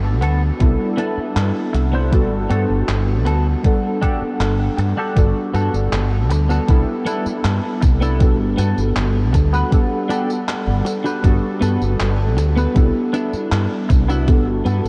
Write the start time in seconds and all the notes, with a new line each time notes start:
Already playing: G1 G3 B3 D4 F#4 A4
0.21 D2 B3 F#4 A4, closed hi-hat
0.59 C2 G3 B3 D4 E4 A4, kick, closed hi-hat
0.97 B3 D4 E4 A4, closed hi-hat
1.18 muted fretless electric bass stroke
1.36 G2, clap, closed hi-hat
1.73 C2, muted clean electric guitar stroke, closed hi-hat
1.93 B3 D4 E4 C5
2.11 G3 B3 D4 F#4 A4, kick, closed hi-hat
2.31 G1
2.49 G2 B3 F#4 A4, closed hi-hat
2.70 G1
2.88 G1, clap, closed hi-hat
3.25 D2 B3 F#4 A4, closed hi-hat
3.63 G3 B3 D4 A4 F#5, kick, closed hi-hat
4.01 D4 F#4 G4 A4, kick, closed hi-hat
4.22 muted fretless electric bass stroke
4.40 G1, clap, closed hi-hat
4.77 G2, muted clean electric guitar stroke, closed hi-hat
4.97 D4 F#4 G4 A4
5.15 G1 G3 B3 D4 F#4 A4, kick, closed hi-hat, tambourine
5.54 G2 B3 F#4 A4, closed hi-hat, tambourine
5.74 G1, tambourine
5.92 G1, clap, closed hi-hat, tambourine
6.29 D2, muted clean electric guitar stroke, closed hi-hat, tambourine
6.49 B3 F#4 A4, tambourine
6.67 C2 G3 B3 D4 E4 A4, kick, closed hi-hat, tambourine
7.06 B3 D4 E4 A4, closed hi-hat, tambourine
7.26 muted fretless electric bass stroke, tambourine
7.44 G2, clap, closed hi-hat, tambourine
7.81 C2, muted clean electric guitar stroke, kick, closed hi-hat, tambourine
8.01 B3 D4 E4 A4, tambourine
8.19 G3 B3 D4 F#4 A4, kick, closed hi-hat, tambourine
8.40 G1
8.57 G2 B3 F#4 A4, closed hi-hat, tambourine
8.78 G1, tambourine
8.96 G1, clap, closed hi-hat, tambourine
9.33 D2, muted clean electric guitar stroke, kick, closed hi-hat, tambourine
9.53 B3 F#4 B4, tambourine
9.71 G3 B3 D4 A4 F#5, kick, closed hi-hat, tambourine
10.09 D4 F#4 G4 A4, closed hi-hat, tambourine
10.30 tambourine
10.49 clap, closed hi-hat, tambourine
10.67 G1
10.85 muted clean electric guitar stroke, closed hi-hat, tambourine
11.04 D4 F#4 G4 B4, tambourine
11.23 G1 G3 B3 D4 F#4 A4, kick, closed hi-hat, tambourine
11.61 G2 B3 F#4 A4, closed hi-hat, tambourine
11.82 G1, tambourine
12.00 G1, clap, closed hi-hat, tambourine
12.37 D2, muted clean electric guitar stroke, closed hi-hat, tambourine
12.57 B3 F#4 B4, tambourine
12.74 C2 G3 B3 D4 E4 A4, kick, closed hi-hat, tambourine
13.13 B3 D4 E4 A4, closed hi-hat, tambourine
13.33 muted fretless electric bass stroke, tambourine
13.52 G2, clap, closed hi-hat, tambourine
13.89 C2, muted clean electric guitar stroke, kick, closed hi-hat, tambourine
14.08 B3 D4 E4 F#4, tambourine
14.26 G3 B3 D4 F#4 A4, kick, closed hi-hat, tambourine
14.47 G1
14.65 G2 B3 F#4 A4, closed hi-hat, tambourine
14.85 G1, tambourine